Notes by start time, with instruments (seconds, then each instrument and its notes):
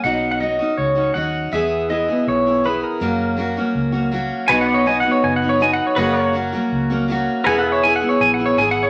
0.04 fingered electric bass B1, steel-string acoustic guitar B2 F#3 C#4 D#4 F#4, pedal steel guitar F#5
0.31 pedal steel guitar F#5
0.40 steel-string acoustic guitar F#3 C#4 D#4 F#4, pedal steel guitar D#5
0.59 steel-string acoustic guitar C#4 D#4 F#4
0.77 fingered electric bass C#2, pedal steel guitar C#5
0.95 steel-string acoustic guitar C#4 D#4 F#4
1.14 fingered electric bass D#2, steel-string acoustic guitar F#3 C#4 D#4 F#4, pedal steel guitar F#5
1.52 fingered electric bass E2, steel-string acoustic guitar E3 B3 E4 G#4, pedal steel guitar E5
1.89 steel-string acoustic guitar E3 B3 E4 G#4, pedal steel guitar D#5
2.08 steel-string acoustic guitar B3 E4 G#4
2.27 fingered electric bass B1, pedal steel guitar C#5
2.46 steel-string acoustic guitar B3 E4 G#4
2.64 steel-string acoustic guitar E3 B3 E4 G#4, pedal steel guitar B4
2.83 pedal steel guitar A#4
3.00 steel-string acoustic guitar F#2 C#3 F#3 A#3 C#4 F#4, fingered electric bass F#2
3.37 steel-string acoustic guitar F#3 A#3 C#4 F#4
3.57 steel-string acoustic guitar F#3 A#3 C#4 F#4
3.75 fingered electric bass C#2
3.92 steel-string acoustic guitar F#3 A#3 C#4 F#4
4.12 steel-string acoustic guitar F#3 A#3 C#4 F#4
4.48 fingered electric bass B1, steel-string acoustic guitar B2 F#3 B3 D#4 F#4, upright piano F#4 B4 D#5, pedal steel guitar B4 C#5 F#5 G#5
4.61 pedal steel guitar F#5
4.74 pedal steel guitar C#5 D#5
4.85 steel-string acoustic guitar F#3 B3 D#4 F#4, pedal steel guitar G#5
5.00 pedal steel guitar F#5
5.04 steel-string acoustic guitar B3 D#4 F#4
5.11 pedal steel guitar C#5
5.24 fingered electric bass F#1, pedal steel guitar G#5
5.36 pedal steel guitar F#5
5.42 steel-string acoustic guitar B3 D#4 F#4
5.49 pedal steel guitar C#5
5.59 steel-string acoustic guitar F#3 B3 D#4 F#4, pedal steel guitar G#5
5.73 pedal steel guitar F#5
5.87 pedal steel guitar C#5
5.96 fingered electric bass F#1, steel-string acoustic guitar F#2 C#3 F#3 A#3 C#4 F#4, upright piano F#4 A#4 C#5, pedal steel guitar B4 C#5 D#5 F#5
6.16 pedal steel guitar A#4
6.23 pedal steel guitar C#5
6.33 steel-string acoustic guitar F#3 A#3 C#4 F#4
6.53 steel-string acoustic guitar F#3 A#3 C#4 F#4
6.72 fingered electric bass C#2
6.90 steel-string acoustic guitar F#3 A#3 C#4 F#4
7.08 steel-string acoustic guitar F#3 A#3 C#4 F#4
7.44 fingered electric bass E1, steel-string acoustic guitar E3 B3 E4 G#4, upright piano E4 G#4 B4, pedal steel guitar A#4 B4 F#5 G#5
7.59 pedal steel guitar F#5
7.69 pedal steel guitar G#4 C#5 E5
7.83 steel-string acoustic guitar E3 B3 E4 G#4, pedal steel guitar G#5
7.96 pedal steel guitar F#5
8.01 steel-string acoustic guitar B3 E4 G#4
8.09 pedal steel guitar C#5
8.21 fingered electric bass A#1, pedal steel guitar G#5
8.34 pedal steel guitar F#5
8.39 steel-string acoustic guitar B3 E4 G#4
8.46 pedal steel guitar C#5
8.57 fingered electric bass G#1, steel-string acoustic guitar E3 B3 E4 G#4, pedal steel guitar G#5
8.71 pedal steel guitar F#5
8.83 pedal steel guitar C#5